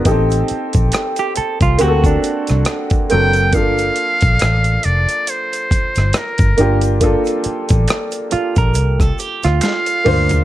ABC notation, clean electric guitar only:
X:1
M:4/4
L:1/16
Q:"Swing 16ths" 1/4=69
K:Gm
V:1 name="Clean electric guitar"
z4 z G A F ^F D6 z | z16 | z6 F B2 A G F4- F |]